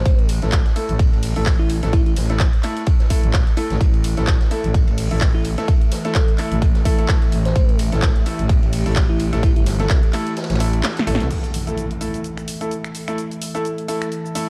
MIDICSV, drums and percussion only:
0, 0, Header, 1, 2, 480
1, 0, Start_track
1, 0, Tempo, 468750
1, 58, Time_signature, 4, 2, 24, 8
1, 14838, End_track
2, 0, Start_track
2, 0, Title_t, "Drums"
2, 57, Note_on_c, 9, 36, 117
2, 57, Note_on_c, 9, 42, 62
2, 61, Note_on_c, 9, 51, 92
2, 159, Note_off_c, 9, 42, 0
2, 160, Note_off_c, 9, 36, 0
2, 163, Note_off_c, 9, 51, 0
2, 192, Note_on_c, 9, 42, 33
2, 294, Note_off_c, 9, 42, 0
2, 296, Note_on_c, 9, 46, 107
2, 302, Note_on_c, 9, 51, 73
2, 399, Note_off_c, 9, 46, 0
2, 404, Note_off_c, 9, 51, 0
2, 433, Note_on_c, 9, 38, 42
2, 433, Note_on_c, 9, 42, 47
2, 534, Note_on_c, 9, 39, 119
2, 535, Note_off_c, 9, 38, 0
2, 535, Note_off_c, 9, 42, 0
2, 535, Note_on_c, 9, 38, 118
2, 536, Note_on_c, 9, 51, 82
2, 537, Note_on_c, 9, 36, 119
2, 537, Note_on_c, 9, 42, 62
2, 636, Note_off_c, 9, 39, 0
2, 638, Note_off_c, 9, 38, 0
2, 638, Note_off_c, 9, 51, 0
2, 639, Note_off_c, 9, 42, 0
2, 640, Note_off_c, 9, 36, 0
2, 671, Note_on_c, 9, 38, 57
2, 673, Note_on_c, 9, 42, 35
2, 773, Note_off_c, 9, 38, 0
2, 775, Note_off_c, 9, 42, 0
2, 775, Note_on_c, 9, 51, 69
2, 777, Note_on_c, 9, 46, 95
2, 878, Note_off_c, 9, 51, 0
2, 880, Note_off_c, 9, 46, 0
2, 913, Note_on_c, 9, 42, 49
2, 1015, Note_off_c, 9, 42, 0
2, 1017, Note_on_c, 9, 36, 116
2, 1018, Note_on_c, 9, 42, 63
2, 1022, Note_on_c, 9, 51, 91
2, 1120, Note_off_c, 9, 36, 0
2, 1120, Note_off_c, 9, 42, 0
2, 1124, Note_off_c, 9, 51, 0
2, 1159, Note_on_c, 9, 51, 46
2, 1257, Note_on_c, 9, 46, 111
2, 1261, Note_off_c, 9, 46, 0
2, 1261, Note_off_c, 9, 51, 0
2, 1261, Note_on_c, 9, 46, 75
2, 1364, Note_off_c, 9, 46, 0
2, 1394, Note_on_c, 9, 42, 50
2, 1495, Note_on_c, 9, 39, 117
2, 1496, Note_off_c, 9, 42, 0
2, 1498, Note_on_c, 9, 36, 119
2, 1498, Note_on_c, 9, 42, 64
2, 1499, Note_on_c, 9, 38, 107
2, 1502, Note_on_c, 9, 51, 85
2, 1598, Note_off_c, 9, 39, 0
2, 1600, Note_off_c, 9, 36, 0
2, 1600, Note_off_c, 9, 42, 0
2, 1601, Note_off_c, 9, 38, 0
2, 1604, Note_off_c, 9, 51, 0
2, 1734, Note_on_c, 9, 51, 63
2, 1737, Note_on_c, 9, 46, 99
2, 1837, Note_off_c, 9, 51, 0
2, 1839, Note_off_c, 9, 46, 0
2, 1869, Note_on_c, 9, 38, 39
2, 1872, Note_on_c, 9, 42, 50
2, 1972, Note_off_c, 9, 38, 0
2, 1975, Note_off_c, 9, 42, 0
2, 1977, Note_on_c, 9, 36, 116
2, 1977, Note_on_c, 9, 42, 59
2, 1977, Note_on_c, 9, 51, 84
2, 2079, Note_off_c, 9, 42, 0
2, 2080, Note_off_c, 9, 36, 0
2, 2080, Note_off_c, 9, 51, 0
2, 2112, Note_on_c, 9, 42, 33
2, 2215, Note_off_c, 9, 42, 0
2, 2217, Note_on_c, 9, 46, 101
2, 2217, Note_on_c, 9, 51, 75
2, 2220, Note_on_c, 9, 38, 52
2, 2319, Note_off_c, 9, 46, 0
2, 2319, Note_off_c, 9, 51, 0
2, 2323, Note_off_c, 9, 38, 0
2, 2349, Note_on_c, 9, 38, 37
2, 2352, Note_on_c, 9, 42, 48
2, 2452, Note_off_c, 9, 38, 0
2, 2454, Note_on_c, 9, 39, 109
2, 2455, Note_off_c, 9, 42, 0
2, 2455, Note_on_c, 9, 38, 118
2, 2457, Note_on_c, 9, 36, 123
2, 2457, Note_on_c, 9, 42, 58
2, 2459, Note_on_c, 9, 51, 84
2, 2557, Note_off_c, 9, 39, 0
2, 2558, Note_off_c, 9, 38, 0
2, 2559, Note_off_c, 9, 42, 0
2, 2560, Note_off_c, 9, 36, 0
2, 2561, Note_off_c, 9, 51, 0
2, 2593, Note_on_c, 9, 42, 32
2, 2695, Note_off_c, 9, 42, 0
2, 2695, Note_on_c, 9, 39, 35
2, 2697, Note_on_c, 9, 46, 94
2, 2699, Note_on_c, 9, 51, 72
2, 2797, Note_off_c, 9, 39, 0
2, 2800, Note_off_c, 9, 46, 0
2, 2802, Note_off_c, 9, 51, 0
2, 2833, Note_on_c, 9, 42, 48
2, 2933, Note_on_c, 9, 51, 89
2, 2935, Note_off_c, 9, 42, 0
2, 2937, Note_on_c, 9, 36, 112
2, 2937, Note_on_c, 9, 42, 58
2, 3035, Note_off_c, 9, 51, 0
2, 3040, Note_off_c, 9, 36, 0
2, 3040, Note_off_c, 9, 42, 0
2, 3067, Note_on_c, 9, 38, 45
2, 3073, Note_on_c, 9, 42, 34
2, 3169, Note_off_c, 9, 38, 0
2, 3176, Note_off_c, 9, 42, 0
2, 3177, Note_on_c, 9, 36, 58
2, 3177, Note_on_c, 9, 46, 115
2, 3181, Note_on_c, 9, 51, 65
2, 3279, Note_off_c, 9, 46, 0
2, 3280, Note_off_c, 9, 36, 0
2, 3283, Note_off_c, 9, 51, 0
2, 3313, Note_on_c, 9, 42, 48
2, 3415, Note_on_c, 9, 38, 121
2, 3415, Note_on_c, 9, 39, 112
2, 3416, Note_off_c, 9, 42, 0
2, 3417, Note_on_c, 9, 51, 89
2, 3418, Note_on_c, 9, 36, 122
2, 3418, Note_on_c, 9, 42, 63
2, 3517, Note_off_c, 9, 38, 0
2, 3518, Note_off_c, 9, 39, 0
2, 3519, Note_off_c, 9, 51, 0
2, 3520, Note_off_c, 9, 36, 0
2, 3521, Note_off_c, 9, 42, 0
2, 3545, Note_on_c, 9, 38, 44
2, 3553, Note_on_c, 9, 42, 34
2, 3648, Note_off_c, 9, 38, 0
2, 3652, Note_on_c, 9, 51, 66
2, 3656, Note_off_c, 9, 42, 0
2, 3657, Note_on_c, 9, 46, 96
2, 3754, Note_off_c, 9, 51, 0
2, 3760, Note_off_c, 9, 46, 0
2, 3793, Note_on_c, 9, 42, 48
2, 3795, Note_on_c, 9, 38, 55
2, 3896, Note_off_c, 9, 42, 0
2, 3897, Note_off_c, 9, 38, 0
2, 3898, Note_on_c, 9, 36, 109
2, 3898, Note_on_c, 9, 42, 61
2, 3900, Note_on_c, 9, 51, 89
2, 4000, Note_off_c, 9, 36, 0
2, 4001, Note_off_c, 9, 42, 0
2, 4003, Note_off_c, 9, 51, 0
2, 4033, Note_on_c, 9, 42, 32
2, 4136, Note_off_c, 9, 42, 0
2, 4138, Note_on_c, 9, 46, 108
2, 4142, Note_on_c, 9, 51, 70
2, 4240, Note_off_c, 9, 46, 0
2, 4245, Note_off_c, 9, 51, 0
2, 4272, Note_on_c, 9, 38, 44
2, 4274, Note_on_c, 9, 42, 48
2, 4375, Note_off_c, 9, 38, 0
2, 4375, Note_on_c, 9, 39, 111
2, 4375, Note_on_c, 9, 51, 82
2, 4376, Note_off_c, 9, 42, 0
2, 4378, Note_on_c, 9, 36, 114
2, 4378, Note_on_c, 9, 42, 63
2, 4384, Note_on_c, 9, 38, 104
2, 4477, Note_off_c, 9, 39, 0
2, 4478, Note_off_c, 9, 51, 0
2, 4480, Note_off_c, 9, 42, 0
2, 4481, Note_off_c, 9, 36, 0
2, 4486, Note_off_c, 9, 38, 0
2, 4510, Note_on_c, 9, 38, 56
2, 4513, Note_on_c, 9, 42, 33
2, 4612, Note_off_c, 9, 38, 0
2, 4616, Note_off_c, 9, 42, 0
2, 4617, Note_on_c, 9, 51, 64
2, 4618, Note_on_c, 9, 46, 88
2, 4719, Note_off_c, 9, 51, 0
2, 4720, Note_off_c, 9, 46, 0
2, 4754, Note_on_c, 9, 42, 50
2, 4856, Note_off_c, 9, 42, 0
2, 4858, Note_on_c, 9, 36, 111
2, 4858, Note_on_c, 9, 42, 61
2, 4861, Note_on_c, 9, 51, 80
2, 4960, Note_off_c, 9, 42, 0
2, 4961, Note_off_c, 9, 36, 0
2, 4963, Note_off_c, 9, 51, 0
2, 4992, Note_on_c, 9, 51, 46
2, 5094, Note_off_c, 9, 51, 0
2, 5095, Note_on_c, 9, 46, 84
2, 5098, Note_off_c, 9, 46, 0
2, 5098, Note_on_c, 9, 46, 106
2, 5201, Note_off_c, 9, 46, 0
2, 5233, Note_on_c, 9, 42, 50
2, 5334, Note_on_c, 9, 51, 86
2, 5335, Note_on_c, 9, 39, 114
2, 5336, Note_off_c, 9, 42, 0
2, 5338, Note_on_c, 9, 36, 118
2, 5338, Note_on_c, 9, 38, 123
2, 5338, Note_on_c, 9, 42, 63
2, 5436, Note_off_c, 9, 51, 0
2, 5437, Note_off_c, 9, 39, 0
2, 5440, Note_off_c, 9, 42, 0
2, 5441, Note_off_c, 9, 36, 0
2, 5441, Note_off_c, 9, 38, 0
2, 5578, Note_on_c, 9, 46, 92
2, 5578, Note_on_c, 9, 51, 61
2, 5680, Note_off_c, 9, 46, 0
2, 5681, Note_off_c, 9, 51, 0
2, 5707, Note_on_c, 9, 38, 38
2, 5713, Note_on_c, 9, 42, 50
2, 5809, Note_off_c, 9, 38, 0
2, 5816, Note_off_c, 9, 42, 0
2, 5817, Note_on_c, 9, 51, 88
2, 5818, Note_on_c, 9, 36, 109
2, 5818, Note_on_c, 9, 42, 64
2, 5919, Note_off_c, 9, 51, 0
2, 5921, Note_off_c, 9, 36, 0
2, 5921, Note_off_c, 9, 42, 0
2, 5954, Note_on_c, 9, 42, 35
2, 6056, Note_off_c, 9, 42, 0
2, 6057, Note_on_c, 9, 51, 63
2, 6058, Note_on_c, 9, 46, 99
2, 6060, Note_on_c, 9, 38, 55
2, 6159, Note_off_c, 9, 51, 0
2, 6161, Note_off_c, 9, 46, 0
2, 6163, Note_off_c, 9, 38, 0
2, 6193, Note_on_c, 9, 42, 50
2, 6195, Note_on_c, 9, 38, 43
2, 6295, Note_on_c, 9, 39, 109
2, 6295, Note_on_c, 9, 51, 81
2, 6296, Note_off_c, 9, 42, 0
2, 6297, Note_off_c, 9, 38, 0
2, 6298, Note_on_c, 9, 36, 113
2, 6298, Note_on_c, 9, 42, 62
2, 6299, Note_on_c, 9, 38, 108
2, 6397, Note_off_c, 9, 51, 0
2, 6398, Note_off_c, 9, 39, 0
2, 6400, Note_off_c, 9, 42, 0
2, 6401, Note_off_c, 9, 36, 0
2, 6401, Note_off_c, 9, 38, 0
2, 6433, Note_on_c, 9, 42, 34
2, 6535, Note_off_c, 9, 42, 0
2, 6535, Note_on_c, 9, 39, 34
2, 6538, Note_on_c, 9, 46, 88
2, 6542, Note_on_c, 9, 51, 65
2, 6638, Note_off_c, 9, 39, 0
2, 6640, Note_off_c, 9, 46, 0
2, 6644, Note_off_c, 9, 51, 0
2, 6673, Note_on_c, 9, 42, 51
2, 6775, Note_off_c, 9, 42, 0
2, 6778, Note_on_c, 9, 36, 113
2, 6778, Note_on_c, 9, 42, 62
2, 6780, Note_on_c, 9, 51, 87
2, 6880, Note_off_c, 9, 42, 0
2, 6881, Note_off_c, 9, 36, 0
2, 6882, Note_off_c, 9, 51, 0
2, 6910, Note_on_c, 9, 38, 44
2, 6913, Note_on_c, 9, 42, 37
2, 7012, Note_off_c, 9, 38, 0
2, 7016, Note_off_c, 9, 42, 0
2, 7017, Note_on_c, 9, 51, 68
2, 7018, Note_on_c, 9, 36, 57
2, 7018, Note_on_c, 9, 46, 100
2, 7120, Note_off_c, 9, 36, 0
2, 7120, Note_off_c, 9, 46, 0
2, 7120, Note_off_c, 9, 51, 0
2, 7153, Note_on_c, 9, 42, 51
2, 7255, Note_off_c, 9, 42, 0
2, 7255, Note_on_c, 9, 39, 112
2, 7257, Note_on_c, 9, 42, 61
2, 7258, Note_on_c, 9, 36, 115
2, 7262, Note_on_c, 9, 38, 110
2, 7264, Note_on_c, 9, 51, 90
2, 7357, Note_off_c, 9, 39, 0
2, 7360, Note_off_c, 9, 36, 0
2, 7360, Note_off_c, 9, 42, 0
2, 7365, Note_off_c, 9, 38, 0
2, 7367, Note_off_c, 9, 51, 0
2, 7393, Note_on_c, 9, 42, 36
2, 7399, Note_on_c, 9, 38, 38
2, 7495, Note_on_c, 9, 51, 64
2, 7496, Note_off_c, 9, 42, 0
2, 7497, Note_on_c, 9, 46, 89
2, 7501, Note_off_c, 9, 38, 0
2, 7598, Note_off_c, 9, 51, 0
2, 7600, Note_off_c, 9, 46, 0
2, 7632, Note_on_c, 9, 42, 50
2, 7635, Note_on_c, 9, 38, 53
2, 7735, Note_off_c, 9, 42, 0
2, 7737, Note_off_c, 9, 38, 0
2, 7737, Note_on_c, 9, 42, 66
2, 7738, Note_on_c, 9, 36, 105
2, 7744, Note_on_c, 9, 51, 82
2, 7840, Note_off_c, 9, 36, 0
2, 7840, Note_off_c, 9, 42, 0
2, 7846, Note_off_c, 9, 51, 0
2, 7873, Note_on_c, 9, 42, 36
2, 7976, Note_off_c, 9, 42, 0
2, 7978, Note_on_c, 9, 46, 96
2, 7979, Note_on_c, 9, 51, 77
2, 8080, Note_off_c, 9, 46, 0
2, 8081, Note_off_c, 9, 51, 0
2, 8114, Note_on_c, 9, 42, 52
2, 8115, Note_on_c, 9, 38, 44
2, 8215, Note_on_c, 9, 39, 109
2, 8216, Note_off_c, 9, 42, 0
2, 8218, Note_off_c, 9, 38, 0
2, 8218, Note_on_c, 9, 36, 111
2, 8218, Note_on_c, 9, 42, 66
2, 8219, Note_on_c, 9, 38, 125
2, 8219, Note_on_c, 9, 51, 87
2, 8318, Note_off_c, 9, 39, 0
2, 8320, Note_off_c, 9, 36, 0
2, 8321, Note_off_c, 9, 38, 0
2, 8321, Note_off_c, 9, 42, 0
2, 8321, Note_off_c, 9, 51, 0
2, 8351, Note_on_c, 9, 38, 50
2, 8353, Note_on_c, 9, 42, 37
2, 8453, Note_off_c, 9, 38, 0
2, 8455, Note_off_c, 9, 42, 0
2, 8458, Note_on_c, 9, 46, 86
2, 8459, Note_on_c, 9, 51, 65
2, 8560, Note_off_c, 9, 46, 0
2, 8562, Note_off_c, 9, 51, 0
2, 8593, Note_on_c, 9, 42, 53
2, 8695, Note_off_c, 9, 42, 0
2, 8698, Note_on_c, 9, 36, 112
2, 8698, Note_on_c, 9, 42, 63
2, 8698, Note_on_c, 9, 51, 91
2, 8800, Note_off_c, 9, 36, 0
2, 8800, Note_off_c, 9, 42, 0
2, 8801, Note_off_c, 9, 51, 0
2, 8835, Note_on_c, 9, 51, 43
2, 8932, Note_on_c, 9, 46, 74
2, 8937, Note_off_c, 9, 46, 0
2, 8937, Note_off_c, 9, 51, 0
2, 8937, Note_on_c, 9, 46, 104
2, 9040, Note_off_c, 9, 46, 0
2, 9073, Note_on_c, 9, 42, 54
2, 9174, Note_on_c, 9, 39, 114
2, 9175, Note_off_c, 9, 42, 0
2, 9177, Note_on_c, 9, 36, 113
2, 9177, Note_on_c, 9, 42, 68
2, 9179, Note_on_c, 9, 38, 109
2, 9179, Note_on_c, 9, 51, 89
2, 9277, Note_off_c, 9, 39, 0
2, 9279, Note_off_c, 9, 42, 0
2, 9280, Note_off_c, 9, 36, 0
2, 9281, Note_off_c, 9, 51, 0
2, 9282, Note_off_c, 9, 38, 0
2, 9416, Note_on_c, 9, 51, 64
2, 9417, Note_on_c, 9, 46, 88
2, 9519, Note_off_c, 9, 46, 0
2, 9519, Note_off_c, 9, 51, 0
2, 9551, Note_on_c, 9, 38, 39
2, 9552, Note_on_c, 9, 42, 53
2, 9653, Note_off_c, 9, 38, 0
2, 9655, Note_off_c, 9, 42, 0
2, 9657, Note_on_c, 9, 36, 112
2, 9657, Note_on_c, 9, 42, 70
2, 9660, Note_on_c, 9, 51, 91
2, 9759, Note_off_c, 9, 36, 0
2, 9760, Note_off_c, 9, 42, 0
2, 9763, Note_off_c, 9, 51, 0
2, 9792, Note_on_c, 9, 42, 36
2, 9895, Note_off_c, 9, 42, 0
2, 9896, Note_on_c, 9, 46, 99
2, 9897, Note_on_c, 9, 51, 77
2, 9899, Note_on_c, 9, 38, 59
2, 9998, Note_off_c, 9, 46, 0
2, 10000, Note_off_c, 9, 51, 0
2, 10001, Note_off_c, 9, 38, 0
2, 10028, Note_on_c, 9, 38, 43
2, 10032, Note_on_c, 9, 42, 55
2, 10130, Note_off_c, 9, 38, 0
2, 10133, Note_on_c, 9, 39, 117
2, 10134, Note_off_c, 9, 42, 0
2, 10136, Note_on_c, 9, 42, 69
2, 10137, Note_on_c, 9, 36, 114
2, 10140, Note_on_c, 9, 38, 122
2, 10142, Note_on_c, 9, 51, 82
2, 10236, Note_off_c, 9, 39, 0
2, 10238, Note_off_c, 9, 42, 0
2, 10239, Note_off_c, 9, 36, 0
2, 10242, Note_off_c, 9, 38, 0
2, 10245, Note_off_c, 9, 51, 0
2, 10272, Note_on_c, 9, 42, 37
2, 10374, Note_off_c, 9, 42, 0
2, 10375, Note_on_c, 9, 39, 36
2, 10377, Note_on_c, 9, 46, 86
2, 10377, Note_on_c, 9, 51, 71
2, 10477, Note_off_c, 9, 39, 0
2, 10479, Note_off_c, 9, 51, 0
2, 10480, Note_off_c, 9, 46, 0
2, 10513, Note_on_c, 9, 42, 52
2, 10615, Note_off_c, 9, 42, 0
2, 10616, Note_on_c, 9, 42, 65
2, 10616, Note_on_c, 9, 51, 66
2, 10618, Note_on_c, 9, 38, 77
2, 10680, Note_off_c, 9, 38, 0
2, 10680, Note_on_c, 9, 38, 78
2, 10688, Note_off_c, 9, 51, 0
2, 10688, Note_on_c, 9, 51, 71
2, 10719, Note_off_c, 9, 42, 0
2, 10749, Note_off_c, 9, 51, 0
2, 10749, Note_on_c, 9, 51, 65
2, 10752, Note_on_c, 9, 42, 38
2, 10753, Note_off_c, 9, 38, 0
2, 10753, Note_on_c, 9, 38, 87
2, 10806, Note_off_c, 9, 51, 0
2, 10806, Note_on_c, 9, 51, 68
2, 10807, Note_off_c, 9, 38, 0
2, 10807, Note_on_c, 9, 38, 92
2, 10855, Note_off_c, 9, 42, 0
2, 10857, Note_on_c, 9, 46, 108
2, 10861, Note_off_c, 9, 51, 0
2, 10861, Note_on_c, 9, 51, 67
2, 10909, Note_off_c, 9, 38, 0
2, 10959, Note_off_c, 9, 46, 0
2, 10963, Note_off_c, 9, 51, 0
2, 10992, Note_on_c, 9, 42, 53
2, 11094, Note_off_c, 9, 42, 0
2, 11094, Note_on_c, 9, 39, 115
2, 11097, Note_on_c, 9, 38, 66
2, 11097, Note_on_c, 9, 42, 69
2, 11098, Note_on_c, 9, 51, 92
2, 11099, Note_off_c, 9, 38, 0
2, 11099, Note_on_c, 9, 38, 125
2, 11197, Note_off_c, 9, 39, 0
2, 11199, Note_off_c, 9, 42, 0
2, 11200, Note_off_c, 9, 51, 0
2, 11201, Note_off_c, 9, 38, 0
2, 11229, Note_on_c, 9, 38, 39
2, 11232, Note_on_c, 9, 42, 38
2, 11257, Note_off_c, 9, 38, 0
2, 11257, Note_on_c, 9, 38, 79
2, 11335, Note_off_c, 9, 42, 0
2, 11337, Note_on_c, 9, 46, 90
2, 11338, Note_on_c, 9, 51, 61
2, 11360, Note_off_c, 9, 38, 0
2, 11417, Note_on_c, 9, 38, 100
2, 11440, Note_off_c, 9, 46, 0
2, 11440, Note_off_c, 9, 51, 0
2, 11471, Note_off_c, 9, 38, 0
2, 11471, Note_on_c, 9, 38, 58
2, 11473, Note_on_c, 9, 42, 54
2, 11574, Note_off_c, 9, 38, 0
2, 11576, Note_off_c, 9, 42, 0
2, 11577, Note_on_c, 9, 42, 63
2, 11577, Note_on_c, 9, 49, 76
2, 11584, Note_on_c, 9, 69, 41
2, 11680, Note_off_c, 9, 42, 0
2, 11680, Note_off_c, 9, 49, 0
2, 11686, Note_off_c, 9, 69, 0
2, 11713, Note_on_c, 9, 42, 35
2, 11719, Note_on_c, 9, 69, 27
2, 11815, Note_off_c, 9, 42, 0
2, 11817, Note_on_c, 9, 46, 97
2, 11822, Note_off_c, 9, 69, 0
2, 11824, Note_on_c, 9, 69, 68
2, 11919, Note_off_c, 9, 46, 0
2, 11926, Note_off_c, 9, 69, 0
2, 11953, Note_on_c, 9, 42, 49
2, 11959, Note_on_c, 9, 69, 30
2, 12055, Note_off_c, 9, 42, 0
2, 12058, Note_on_c, 9, 42, 60
2, 12062, Note_off_c, 9, 69, 0
2, 12065, Note_on_c, 9, 69, 40
2, 12161, Note_off_c, 9, 42, 0
2, 12167, Note_off_c, 9, 69, 0
2, 12193, Note_on_c, 9, 42, 33
2, 12296, Note_off_c, 9, 42, 0
2, 12298, Note_on_c, 9, 46, 82
2, 12304, Note_on_c, 9, 69, 70
2, 12400, Note_off_c, 9, 46, 0
2, 12406, Note_off_c, 9, 69, 0
2, 12433, Note_on_c, 9, 42, 47
2, 12439, Note_on_c, 9, 69, 30
2, 12535, Note_off_c, 9, 42, 0
2, 12537, Note_on_c, 9, 42, 59
2, 12542, Note_off_c, 9, 69, 0
2, 12543, Note_on_c, 9, 69, 40
2, 12639, Note_off_c, 9, 42, 0
2, 12646, Note_off_c, 9, 69, 0
2, 12672, Note_on_c, 9, 26, 55
2, 12678, Note_on_c, 9, 69, 28
2, 12774, Note_off_c, 9, 26, 0
2, 12777, Note_on_c, 9, 46, 98
2, 12781, Note_off_c, 9, 69, 0
2, 12784, Note_on_c, 9, 69, 70
2, 12880, Note_off_c, 9, 46, 0
2, 12886, Note_off_c, 9, 69, 0
2, 12913, Note_on_c, 9, 42, 49
2, 12920, Note_on_c, 9, 69, 30
2, 13016, Note_off_c, 9, 42, 0
2, 13019, Note_on_c, 9, 42, 63
2, 13022, Note_off_c, 9, 69, 0
2, 13025, Note_on_c, 9, 69, 41
2, 13121, Note_off_c, 9, 42, 0
2, 13128, Note_off_c, 9, 69, 0
2, 13153, Note_on_c, 9, 26, 68
2, 13160, Note_on_c, 9, 69, 28
2, 13256, Note_off_c, 9, 26, 0
2, 13258, Note_on_c, 9, 46, 86
2, 13262, Note_off_c, 9, 69, 0
2, 13264, Note_on_c, 9, 69, 73
2, 13360, Note_off_c, 9, 46, 0
2, 13366, Note_off_c, 9, 69, 0
2, 13393, Note_on_c, 9, 26, 57
2, 13393, Note_on_c, 9, 42, 47
2, 13399, Note_on_c, 9, 69, 29
2, 13495, Note_off_c, 9, 26, 0
2, 13495, Note_off_c, 9, 42, 0
2, 13498, Note_on_c, 9, 42, 58
2, 13502, Note_off_c, 9, 69, 0
2, 13505, Note_on_c, 9, 69, 39
2, 13600, Note_off_c, 9, 42, 0
2, 13607, Note_off_c, 9, 69, 0
2, 13634, Note_on_c, 9, 42, 32
2, 13641, Note_on_c, 9, 69, 26
2, 13737, Note_off_c, 9, 42, 0
2, 13738, Note_on_c, 9, 46, 100
2, 13743, Note_off_c, 9, 69, 0
2, 13744, Note_on_c, 9, 69, 70
2, 13840, Note_off_c, 9, 46, 0
2, 13847, Note_off_c, 9, 69, 0
2, 13873, Note_on_c, 9, 42, 47
2, 13879, Note_on_c, 9, 69, 30
2, 13975, Note_off_c, 9, 42, 0
2, 13978, Note_on_c, 9, 42, 57
2, 13982, Note_off_c, 9, 69, 0
2, 13984, Note_on_c, 9, 69, 39
2, 14080, Note_off_c, 9, 42, 0
2, 14087, Note_off_c, 9, 69, 0
2, 14113, Note_on_c, 9, 42, 34
2, 14216, Note_off_c, 9, 42, 0
2, 14217, Note_on_c, 9, 46, 85
2, 14224, Note_on_c, 9, 69, 67
2, 14320, Note_off_c, 9, 46, 0
2, 14326, Note_off_c, 9, 69, 0
2, 14353, Note_on_c, 9, 26, 70
2, 14353, Note_on_c, 9, 42, 47
2, 14359, Note_on_c, 9, 69, 29
2, 14455, Note_off_c, 9, 26, 0
2, 14455, Note_off_c, 9, 42, 0
2, 14457, Note_on_c, 9, 42, 60
2, 14462, Note_off_c, 9, 69, 0
2, 14463, Note_on_c, 9, 69, 39
2, 14559, Note_off_c, 9, 42, 0
2, 14566, Note_off_c, 9, 69, 0
2, 14599, Note_on_c, 9, 69, 28
2, 14697, Note_on_c, 9, 46, 104
2, 14701, Note_off_c, 9, 69, 0
2, 14704, Note_on_c, 9, 69, 72
2, 14799, Note_off_c, 9, 46, 0
2, 14806, Note_off_c, 9, 69, 0
2, 14838, End_track
0, 0, End_of_file